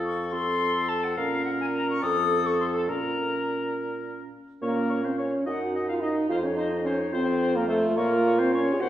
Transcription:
Already playing: F2 C4 F4 A4
0.05 C#6
0.32 C4 A4 C6
0.89 A5
1.04 F#5
1.17 A#2 C#4 A#4 F5
1.45 F#5
1.60 G#5
1.74 A#5
1.90 C#6
2.02 F2 C4 A4 D#6
2.46 C#6
2.60 C6
2.76 A5
2.88 A#2 C#4 A#4 A#5
4.61 A#2 A#3 C#4 A#4 C#5
4.89 C#5
5.04 C4 C5
5.18 C#4 C#5
5.46 F#2 D#4 F#4 D#5 F#5
5.75 D#5
5.88 F4 F5
6.02 D#4 D#5
6.29 F2 F4 C5 F5
6.43 C#4 C#5
6.56 D#4 C5 D#5
6.84 C#4 C5 C#5
7.13 F2 C4 F4 C5
7.42 C5
7.55 A#3 A#4
7.68 A3 A4 C5
7.96 A#2 A#3 A#4 C#5
8.26 C#5
8.39 C4 C5
8.52 C#4 C#5
8.74 G#4
8.80 D#2 F#4 C5 F#5

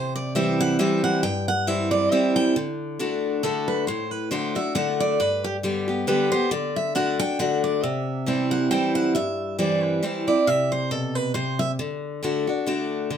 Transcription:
Already playing: C3 C5
0.16 D5
0.35 E3 G3 C4 E4 E5
0.61 F#5
0.79 E3 G3 C4 E4 E5
1.04 F#5
1.23 G2 G5
1.48 F#5
1.67 E3 G3 C4 E4 E5
1.91 D5
2.11 E3 G3 C4 E4 E5
2.36 G5
2.56 D3
2.99 D3 A3 D4 F#4
3.43 D3 A3 D4 F#4 A4
3.68 B4
3.87 A2 C5
4.11 B4
4.31 D3 A3 D4 F#4 C5
4.55 D4 F#4 E5
4.75 D3 A3 D4 F#4 F#5
5.00 D5
5.20 G2 B4
5.44 G4
5.63 D3 G3 B3 G4
5.88 B3 G4
6.07 D3 G3 B3 G4 B4
6.32 B3 G4 C5
6.51 D3 D5
6.76 E5
6.95 D3 A3 D4 F#4 F#5
7.19 D4 F#4 G5
7.39 D3 A3 D4 F#4 F#5
7.64 D5
7.83 C3 E5
8.26 E3 G3 C4 E4
8.51 F#5
8.71 E3 G3 C4 E4 G5
8.95 F#5
9.15 G2 E5
9.59 E3 G3 C4 E4 D5
9.84 B4
10.03 E3 G3 C4 E4 C5
10.27 C4 E4 D5
10.47 C3 E5
10.72 C5
10.91 B2 A4
11.15 B4
11.34 C3 C5
11.59 E5
11.79 D3
12.23 D3 A3 D4 F#4
12.47 D4 F#4
12.66 D3 A3 D4 F#4
13.10 D3

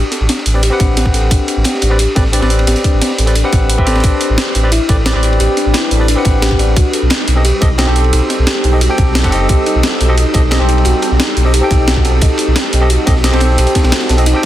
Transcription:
Already playing: G4
0.11 A4, snare, closed hi-hat, ride
0.21 A1
0.29 D4, snare, closed hi-hat, ride
0.38 snare
0.46 A1, closed hi-hat, open hi-hat
0.54 C4 G4 B4 D5
0.63 G4, closed hi-hat, ride
0.70 C4 G4 B4 F#5
0.80 A1 D4, kick, snare, closed hi-hat, ride
0.97 G4, snare, closed hi-hat, ride
1.06 A1, kick
1.14 A4, closed hi-hat, ride
1.31 A1 D4, kick, closed hi-hat, ride
1.48 closed hi-hat, ride
1.57 A1
1.64 G4, snare, closed hi-hat, ride
1.74 snare
1.82 A1 D4, closed hi-hat, ride
1.90 C4 G4 B4 D5
1.99 G4, closed hi-hat, ride
2.15 A1 C4 G4 A4 B4 D5, kick, snare, closed hi-hat, ride
2.25 snare
2.32 C4 D4 G4 B4 D5, closed hi-hat, ride
2.40 A1 C4 G4 B4 D5, snare, ride
2.50 snare, closed hi-hat
2.59 ride
2.67 A1 G4, snare, closed hi-hat, ride
2.76 snare, closed hi-hat
2.84 D4, kick, closed hi-hat, ride
2.93 A1
3.01 G4, snare, closed hi-hat, ride
3.10 snare
3.18 A1 A4, closed hi-hat, open hi-hat
3.26 C4 G4 B4 D5, closed hi-hat
3.35 D4, closed hi-hat, ride
3.44 C4 G4 B4 F#5
3.52 A1, kick, snare, closed hi-hat, ride
3.70 B4, closed hi-hat
3.78 A1 C4 G4 B4 E5, kick
3.85 C4 G4 A4 B4 D5, snare, closed hi-hat, ride
3.95 snare, ride
3.99 snare, ride
4.04 A1 G3 C4 D4 B4, kick, closed hi-hat, ride
4.21 closed hi-hat, ride
4.30 A1
4.38 G4, snare, closed hi-hat, ride
4.47 snare
4.55 A1 D4, closed hi-hat, ride
4.63 C4 G4 B4 D5
4.72 E4, closed hi-hat, ride
4.88 A1 C4 G4 A4 B4 D5, kick, closed hi-hat, ride
5.05 C4 D4 G4 B4 D5, snare, closed hi-hat, ride
5.13 A1 C4 G4 B4 D5
5.23 closed hi-hat, ride
5.33 ride
5.40 A1 G4, closed hi-hat, ride
5.57 D4, snare, closed hi-hat, ride
5.66 A1
5.74 E4, snare, closed hi-hat, ride
5.83 snare
5.91 A1 A4, closed hi-hat, open hi-hat
5.99 C4 G4 B4 D5
6.08 D4, closed hi-hat, ride
6.15 C4 G4 B4 F#5
6.25 A1, kick, snare, closed hi-hat, ride
6.42 G4, snare, closed hi-hat, ride
6.51 A1, kick
6.59 D4, closed hi-hat, ride
6.76 B1 D#4 F#4 A4, kick, closed hi-hat, ride
6.93 A4, closed hi-hat, ride
7.02 B1
7.10 D#4, snare, closed hi-hat, ride
7.20 snare
7.28 B1, closed hi-hat, ride
7.36 C4 G4 A4 D#5
7.45 G4, closed hi-hat, ride
7.61 B1 C4 D#4 G4 A4 D#5, kick, closed hi-hat, ride
7.78 C4 F#4 G4 A4 D#5, snare, closed hi-hat, ride
7.86 B1 C4 G4 A4 C5
7.96 A4, closed hi-hat, ride
8.04 ride
8.13 B1 D#4, closed hi-hat, ride
8.30 snare, closed hi-hat, ride
8.39 B1
8.47 G4, snare, closed hi-hat, ride
8.56 snare
8.64 B1 D#4, closed hi-hat, open hi-hat
8.72 C4 G4 A4 D#5
8.81 F#4, closed hi-hat, ride
8.89 C4 G4 A4 G5
8.98 B1 A4, kick, snare, closed hi-hat, ride
9.15 D#4, snare, closed hi-hat, ride
9.23 F#1 C4 G4 A4 F#5, kick, snare, closed hi-hat, ride
9.31 C4 G4 A4 D#5, closed hi-hat, ride
9.49 B1 G4, kick, closed hi-hat, ride
9.66 D#4, closed hi-hat, ride
9.75 B1
9.83 F#4, snare, closed hi-hat, ride
9.93 snare
10.01 B1 A4, closed hi-hat, ride
10.08 C4 G4 A4 D#5
10.18 D#4, closed hi-hat, ride
10.33 B1 C4 G4 A4 D#5, kick, closed hi-hat, ride
10.51 C4 G4 A4 D#5, snare, closed hi-hat, ride
10.58 B1 C4 G4 A4 C5
10.69 D#4, closed hi-hat, ride
10.78 ride
10.85 B1 F#4, closed hi-hat, ride
11.02 A4, snare, closed hi-hat, ride
11.11 B1
11.20 D#4, snare, closed hi-hat, ride
11.28 snare
11.37 B1, closed hi-hat, open hi-hat
11.45 C4 G4 A4 D#5
11.54 G4, closed hi-hat, ride
11.61 C4 G4 A4 G5
11.71 B1 D#4, kick, snare, closed hi-hat, ride
11.87 F#4, snare, closed hi-hat, ride
11.96 B1, kick
12.05 A4, closed hi-hat, ride
12.21 B1 D#4, kick, closed hi-hat, ride
12.38 closed hi-hat, ride
12.48 B1
12.56 G4, snare, closed hi-hat, ride
12.65 snare
12.73 B1 D#4, closed hi-hat, ride
12.81 C4 G4 A4 D#5
12.90 F#4, closed hi-hat, ride
13.06 B1 C4 G4 A4 D#5, kick, snare, closed hi-hat, ride
13.16 snare
13.23 C4 D#4 G4 A4 D#5, snare, closed hi-hat, open hi-hat
13.31 B1 C4 G4 A4 C5, snare, ride
13.40 snare, closed hi-hat, ride
13.50 snare
13.58 B1 G4, closed hi-hat, ride
13.67 closed hi-hat
13.75 D#4, kick, snare, closed hi-hat, ride
13.84 B1, snare, ride
13.92 F#4, snare, closed hi-hat, ride
14.01 snare, ride
14.09 B1 A4, snare, closed hi-hat, ride
14.17 C4 G4 A4 D#5, closed hi-hat
14.26 D#4, closed hi-hat, ride
14.33 C4 G4 A4 G5

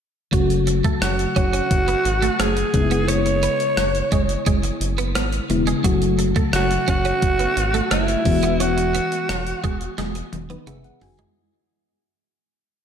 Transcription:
0.31 F#1 C#3 F#3 A3 F#4, kick, closed hi-hat
0.50 closed hi-hat
0.67 muted clean electric guitar stroke, closed hi-hat
0.84 A3, kick, closed hi-hat
1.02 F#1 F#4, muted clean electric guitar stroke, cross-stick, closed hi-hat
1.19 closed hi-hat
1.36 F#1 C#4 F#4, kick, closed hi-hat
1.53 C#4, closed hi-hat
1.71 F#1, kick, closed hi-hat
1.88 B3, closed hi-hat
2.05 G#1, muted clean electric guitar stroke, closed hi-hat
2.22 A3, closed hi-hat
2.39 F#1 A3 G#4, cross-stick, closed hi-hat
2.57 muted clean electric guitar stroke, closed hi-hat
2.73 F#1 C#3 G#3 B3 D#4, kick, closed hi-hat
2.82 E4
2.91 B3, closed hi-hat
3.08 C#4 C#5, closed hi-hat
3.26 muted clean electric guitar stroke, closed hi-hat
3.43 B3, closed hi-hat
3.60 closed hi-hat
3.77 F#1, cross-stick, closed hi-hat
3.95 closed hi-hat
4.12 F#1 G#3, kick, closed hi-hat
4.29 closed hi-hat
4.46 F#1 G#3, kick, closed hi-hat
4.63 muted clean electric guitar stroke, closed hi-hat
4.81 F#1, closed hi-hat
4.98 B3, closed hi-hat
5.15 G#1 B3, cross-stick, closed hi-hat
5.32 closed hi-hat
5.49 E1 C#3 G#3 B3 E4, muted clean electric guitar stroke, closed hi-hat
5.67 G#3, closed hi-hat
5.83 F#1 C#3 F#3 A3 F#4, kick, closed hi-hat
6.02 closed hi-hat
6.19 muted clean electric guitar stroke, closed hi-hat
6.36 A3, kick, closed hi-hat
6.53 F#1 F#4, muted clean electric guitar stroke, cross-stick, closed hi-hat
6.71 closed hi-hat
6.88 F#1 C#4 F#4, kick, closed hi-hat
7.05 C#4, closed hi-hat
7.22 F#1, kick, closed hi-hat
7.39 B3, closed hi-hat
7.57 G#1, muted clean electric guitar stroke, closed hi-hat
7.74 A3, closed hi-hat
7.91 F#1 A3 E4, cross-stick, closed hi-hat
8.08 muted clean electric guitar stroke, closed hi-hat
8.24 E1 E3 G#3 B3 F#4, kick, open hi-hat
8.43 B3, closed hi-hat
8.60 C#4 F#4, closed hi-hat
8.78 muted clean electric guitar stroke, closed hi-hat
8.95 B3, closed hi-hat
9.12 closed hi-hat
9.29 E1, cross-stick, closed hi-hat
9.47 closed hi-hat
9.64 E1 G#3, kick, closed hi-hat
9.81 closed hi-hat
9.98 E1 G#3, snare, closed hi-hat
10.15 muted clean electric guitar stroke, closed hi-hat
10.33 E1, closed hi-hat, high tom
10.50 B3 D#4 B4, closed hi-hat, high tom
10.67 F#1 B3 G#4 E5, closed hi-hat, mid tom
10.84 F#5, closed hi-hat
11.01 F#1 F#4 G#5, muted clean electric guitar stroke, floor tom, open hi-hat
11.19 G#3 E4, closed hi-hat, floor tom

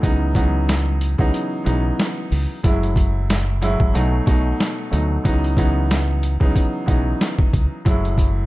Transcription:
0.02 C#2 C#3 E3 F#3 B3 D#4, kick, closed hi-hat
0.35 C#3 E3 F#3 B3 D#4, kick, closed hi-hat
0.69 snare, closed hi-hat
1.01 closed hi-hat
1.18 C#2 C#3 E3 F#3 B3 D#4, kick
1.34 closed hi-hat
1.64 B1 C#3 E3 F#3 B3 D#4, closed hi-hat
1.99 snare, closed hi-hat
2.32 C#2, open hi-hat
2.63 F#1 A2 F#3 G#3 E4, kick, closed hi-hat
2.83 closed hi-hat
2.96 kick, closed hi-hat
3.30 snare, closed hi-hat
3.61 A2 F#3 G#3 E4, closed hi-hat
3.80 G#1, kick
3.94 B1 B2 F#3 A3 D#4, closed hi-hat
4.26 B1 B2 F#3 A3 D#4, kick, closed hi-hat
4.60 snare, closed hi-hat
4.91 D2 B2 F#3 A3 D#4, closed hi-hat
5.24 C#2 C#3 E3 F#3 B3 D#4, kick, closed hi-hat
5.44 closed hi-hat
5.56 C#3 E3 F#3 B3 D#4, kick, closed hi-hat
5.91 snare, closed hi-hat
6.23 closed hi-hat
6.40 C#2 C#3 E3 F#3 B3 D#4, kick
6.56 kick, closed hi-hat
6.86 B1 C#3 E3 F#3 B3 D#4, kick, closed hi-hat
7.21 snare, closed hi-hat
7.39 kick
7.53 C#2, kick, closed hi-hat
7.85 F#1 A2 F#3 G#3 E4, kick, closed hi-hat
8.05 closed hi-hat
8.18 kick, closed hi-hat

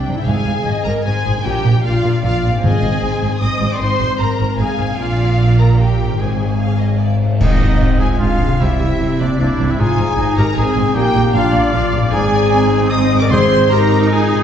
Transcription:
Already playing: C3 G3 C4 D4 C5 G5
0.07 C2 G#2 C3
0.13 A#3 E4
0.18 D#4 E5
0.22 G#1 G#4 C5 F5
0.27 G#2 G#5
0.46 G#1 G#2
0.65 G#1 G#2 D#5
0.84 G#1 G#2 A#4 A#5
1.04 G#1 G#2 G#4 C5 G#5
1.25 G#1 G#2 A#2
1.32 A#3
1.37 D4
1.41 G4 D5 G5
1.45 A#1 A#2 A#4
1.64 A#1 A#2
1.85 A#1 A#2 F4 D5 F5
2.03 A#1 A#2
2.24 A#1 A#2 F4 D5 F5
2.43 A#1 G#2 A#2
2.50 C4
2.55 D#4
2.59 G#1 G#2 G#4 C5 G#5
2.64 G#2 D#5
2.83 G#1 G#2
3.02 G#1 G#2 C5
3.22 G#1 G#2
3.40 G#1 G#2 D#5 D#6
3.61 G#1 G#2
3.68 C4 D6
3.72 F4 D5
3.77 C5 C6
3.81 G#1 G#2 C5
3.99 G#1 G#2
4.20 G#1 G#2 A#4 A#5
4.40 G#1 G#2
4.58 G#1 G#2 G#4 F5 G#5
4.78 G#1 G#2 A#2
4.86 A#3
4.90 D4
4.95 A#1 D5 F5
4.99 A#2 F4 D5
5.58 A#4 A#5
5.78 G4 A#4 G5
6.02 G#2
6.07 C4
6.11 D#3
6.16 G#1 G#2 G#4 C5 G#5
6.59 F5
6.81 D#5
6.99 D5
7.20 G#2 C5
7.28 A#3
7.32 C4
7.37 G#1 G#2 D#4 C5 D#5, concert bass drum, crash
7.42 C4 D#4 D#5
7.60 G#1 G#2
7.81 G#1 G#2 C4
7.99 G#1 G#2 F4 G#4 G#5
8.19 G#1 G#2 G#3 D4 F4 F5
8.40 G#1 G#2 C3
8.48 G3
8.52 C4
8.57 C2 C4 E4 C5 E5
8.61 C3 G3 E4 E5
8.79 C2 C3
8.99 C2 C3 C4
9.19 C2 C3 A#3 D4 D5
9.38 C2 C3 A#3 D4 E4 D5
9.58 C2 G#2 C3
9.66 A#3 C4 E4 E5
9.70 D#4 E4
9.75 G#1 G#2 F4 G#4 C5 G#5
9.79 D#4 G#4 G#5
9.97 G#1 G#2
10.17 G#1 G#2 D#4
10.36 G#1 G#2 G4 A#4 A#5
10.56 G#1 G#2 C4 D#4 G#4 G#5
10.76 G#1 G#2 A#2
10.82 A#3
10.87 F4
10.92 A#1 A#2 D#4 G4 D5 G5
10.96 A#3 G5
11.15 A#1 A#2
11.33 A#1 A#2 D4 F4 D5 F5
11.53 A#1 A#2
11.72 A#1 A#2 D4 F4 F5
11.93 A#1 G#2 A#2
12.00 C4
12.05 D#4
12.09 G#1 G#2 D#4 G#4 C5 G#5
12.52 C4
12.90 C5 D#5 D#6
13.14 G#2
13.18 C4 A#4 D5 D6
13.22 F4 D5
13.27 G#2 C4 C5 C6
13.32 G#4 C5
13.69 D#4 G4 A#4 A#5
14.09 F4 G#4 G#5
14.33 A#2
14.37 A#3

